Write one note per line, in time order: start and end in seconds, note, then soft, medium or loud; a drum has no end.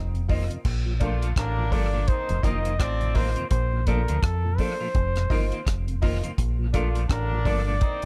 0.00 0.48 F1 medium
0.00 0.27 A#3 medium
0.00 0.27 C4 medium
0.00 0.27 D#4 medium
0.14 0.22 F2 medium
0.14 0.22 C3 medium
0.14 closed hi-hat soft
0.28 0.42 D#3 medium
0.28 0.40 F3 medium
0.28 0.40 A#3 medium
0.28 0.43 A#3 medium
0.28 0.43 C4 medium
0.28 0.41 D#4 medium
0.28 0.53 F4 medium
0.28 0.43 F4 medium
0.28 0.49 A#4 medium
0.28 0.49 D#5 medium
0.28 kick medium
0.28 open hi-hat medium
0.50 0.58 F2 medium
0.50 0.58 C3 medium
0.50 0.56 A#4 soft
0.50 0.56 D#5 soft
0.50 closed hi-hat soft
0.65 1.33 A#1 loud
0.65 kick loud
0.65 crash medium
0.86 0.94 A#2 medium
0.86 0.94 F3 medium
1.00 1.14 F3 medium
1.00 1.12 A3 medium
1.00 1.14 A3 medium
1.00 1.12 A#3 medium
1.00 1.29 A#3 medium
1.00 1.24 D4 loud
1.00 1.12 D4 medium
1.00 1.30 D4 medium
1.00 1.15 D4 medium
1.00 1.30 F4 medium
1.00 1.15 F4 medium
1.00 1.24 A4 medium
1.00 1.25 A#4 loud
1.00 kick loud
1.00 closed hi-hat medium
1.22 1.30 F3 medium
1.22 1.30 A3 medium
1.22 1.30 D4 medium
1.22 1.29 F4 medium
1.22 closed hi-hat medium
1.36 1.71 A1 medium
1.36 2.04 D3 loud
1.36 2.04 A#3 loud
1.36 2.04 D4 loud
1.36 1.74 A#4 medium
1.36 kick loud
1.36 cross-stick loud
1.36 closed hi-hat medium
1.57 1.65 A#2 medium
1.57 1.65 F3 medium
1.71 2.06 G1 loud
1.71 1.86 F3 medium
1.71 1.83 A3 medium
1.71 1.86 A3 medium
1.71 1.83 A#3 medium
1.71 1.96 D4 medium
1.71 1.84 D4 medium
1.71 1.86 D4 medium
1.71 1.87 F4 medium
1.71 1.96 A4 medium
1.71 1.96 A#4 loud
1.71 2.10 D5 loud
1.71 kick medium
1.71 open hi-hat medium
1.93 2.01 A#2 medium
1.93 2.01 F3 medium
1.93 2.01 F3 soft
1.93 2.01 A3 medium
1.93 2.01 D4 medium
1.93 2.01 F4 medium
2.08 2.37 A#3 medium
2.08 2.37 C4 medium
2.08 2.37 D#4 loud
2.08 2.46 C5 loud
2.08 kick loud
2.08 closed hi-hat medium
2.29 2.43 F1 loud
2.29 2.37 F2 medium
2.29 2.37 C3 medium
2.29 closed hi-hat soft
2.42 2.78 F1 medium
2.42 2.57 D#3 medium
2.42 2.55 F3 medium
2.42 2.55 A#3 medium
2.42 2.72 A#3 medium
2.42 2.58 A#3 medium
2.42 2.72 C4 medium
2.42 2.58 C4 medium
2.42 2.67 D#4 medium
2.42 2.55 D#4 medium
2.42 2.73 D#4 medium
2.42 2.68 F4 medium
2.42 2.58 F4 loud
2.42 2.68 A#4 loud
2.42 2.81 D#5 loud
2.42 kick medium
2.42 closed hi-hat medium
2.65 2.73 D#3 soft
2.65 2.73 A#3 medium
2.65 2.73 C4 medium
2.65 2.72 F4 medium
2.65 closed hi-hat medium
2.78 3.34 A1 medium
2.78 3.33 D#3 loud
2.78 3.33 F3 loud
2.78 3.33 C4 loud
2.78 3.17 D5 loud
2.78 kick loud
2.78 cross-stick loud
2.78 closed hi-hat loud
3.00 3.09 F2 medium
3.00 3.08 C3 medium
3.00 closed hi-hat soft
3.14 3.29 D#3 medium
3.14 3.27 F3 medium
3.14 3.27 A#3 medium
3.14 3.29 A#3 medium
3.14 3.30 C4 medium
3.14 3.39 D#4 medium
3.14 3.27 D#4 medium
3.14 3.35 F4 medium
3.14 3.30 F4 medium
3.14 3.35 A#4 loud
3.14 3.50 C5 medium
3.14 kick medium
3.14 open hi-hat medium
3.36 3.45 F2 medium
3.36 3.45 C3 medium
3.36 3.45 D#3 medium
3.36 3.45 A#3 medium
3.36 3.44 C4 medium
3.36 3.42 F4 soft
3.36 3.44 F4 medium
3.36 3.42 A#4 soft
3.36 closed hi-hat medium
3.50 4.06 A#1 loud
3.50 3.89 C5 medium
3.50 kick loud
3.50 closed hi-hat medium
3.73 3.81 A#2 medium
3.73 3.81 F3 medium
3.87 4.01 F3 medium
3.87 3.99 A3 medium
3.87 4.01 A3 medium
3.87 4.11 A#3 medium
3.87 3.99 A#3 medium
3.87 4.11 D4 medium
3.87 3.99 D4 medium
3.87 4.01 D4 medium
3.87 4.02 F4 loud
3.87 4.12 A4 medium
3.87 4.24 A#4 medium
3.87 kick loud
3.87 closed hi-hat medium
4.08 4.22 D2 medium
4.08 4.17 F3 medium
4.08 4.16 A3 medium
4.08 4.16 D4 medium
4.08 4.16 F4 medium
4.08 closed hi-hat medium
4.22 4.57 F2 medium
4.22 4.60 A4 medium
4.22 kick loud
4.22 cross-stick loud
4.22 closed hi-hat medium
4.45 4.52 A#2 medium
4.45 4.52 F3 medium
4.58 4.73 F3 medium
4.58 4.71 A3 medium
4.58 4.73 A3 medium
4.58 4.83 A#3 medium
4.58 4.71 A#3 medium
4.58 4.83 D4 medium
4.58 4.71 D4 medium
4.58 4.73 D4 medium
4.58 4.73 F4 medium
4.58 4.83 A4 medium
4.58 5.66 C5 loud
4.58 kick medium
4.58 open hi-hat medium
4.80 4.88 A#2 medium
4.80 4.88 F3 medium
4.80 4.88 F3 soft
4.80 4.88 A3 medium
4.80 4.88 D4 medium
4.80 4.88 F4 medium
4.95 5.29 F1 loud
4.95 kick loud
4.95 closed hi-hat medium
5.16 5.24 F2 medium
5.16 5.24 C3 medium
5.16 cross-stick medium
5.16 closed hi-hat soft
5.30 5.51 G1 medium
5.30 5.44 D#3 medium
5.30 5.42 F3 medium
5.30 5.42 A#3 medium
5.30 5.45 A#3 medium
5.30 5.45 C4 medium
5.30 5.54 D#4 loud
5.30 5.42 D#4 medium
5.30 5.55 F4 medium
5.30 5.45 F4 medium
5.30 5.55 A#4 loud
5.30 kick medium
5.30 open hi-hat medium
5.52 5.60 D#3 medium
5.52 5.60 A#3 medium
5.52 5.59 C4 medium
5.52 5.59 F4 medium
5.52 closed hi-hat soft
5.67 6.21 F1 medium
5.67 kick loud
5.67 cross-stick loud
5.67 closed hi-hat medium
5.88 5.96 F2 medium
5.88 5.96 C3 medium
5.88 closed hi-hat soft
6.02 6.16 D#3 medium
6.02 6.14 F3 medium
6.02 6.14 A#3 medium
6.02 6.16 A#3 medium
6.02 6.16 C4 medium
6.02 6.26 D#4 medium
6.02 6.14 D#4 medium
6.02 6.22 F4 medium
6.02 6.17 F4 medium
6.02 6.22 A#4 medium
6.02 kick loud
6.02 open hi-hat medium
6.23 6.31 F2 medium
6.23 6.31 C3 medium
6.23 6.32 D#3 soft
6.23 6.31 A#3 medium
6.23 6.31 C4 medium
6.23 6.29 F4 soft
6.23 6.31 F4 medium
6.23 6.29 A#4 soft
6.23 closed hi-hat medium
6.38 7.07 A#1 loud
6.38 kick loud
6.38 closed hi-hat medium
6.59 6.67 A#2 medium
6.59 6.67 F3 medium
6.73 6.88 F3 medium
6.73 6.85 A3 medium
6.73 6.88 A3 medium
6.73 7.02 A#3 medium
6.73 6.85 A#3 medium
6.73 7.02 D4 medium
6.73 6.98 D4 medium
6.73 6.86 D4 medium
6.73 6.88 D4 medium
6.73 7.02 F4 medium
6.73 6.88 F4 loud
6.73 6.98 A4 medium
6.73 6.98 A#4 medium
6.73 kick loud
6.73 closed hi-hat medium
6.95 7.03 F3 medium
6.95 7.03 A3 medium
6.95 7.03 D4 medium
6.95 7.02 F4 medium
6.95 closed hi-hat medium
7.08 7.44 A1 medium
7.08 7.77 D3 loud
7.08 7.77 A#3 loud
7.08 7.77 D4 loud
7.08 7.49 A#4 medium
7.08 kick loud
7.08 cross-stick loud
7.08 closed hi-hat medium
7.31 7.39 A#2 medium
7.31 7.39 F3 medium
7.45 7.80 G1 loud
7.45 7.59 F3 medium
7.45 7.57 A3 medium
7.45 7.60 A3 medium
7.45 7.57 A#3 medium
7.45 7.69 D4 medium
7.45 7.58 D4 medium
7.45 7.60 D4 medium
7.45 7.60 F4 medium
7.45 7.70 A4 medium
7.45 7.70 A#4 loud
7.45 8.05 D5 loud
7.45 kick loud
7.45 open hi-hat medium
7.66 7.75 A#2 medium
7.66 7.75 F3 medium
7.66 7.75 F3 soft
7.66 7.74 A3 medium
7.66 7.74 D4 medium
7.66 7.74 F4 medium
7.80 8.05 A#3 medium
7.80 8.05 C4 medium
7.80 8.05 D#4 loud
7.80 kick loud
7.80 closed hi-hat medium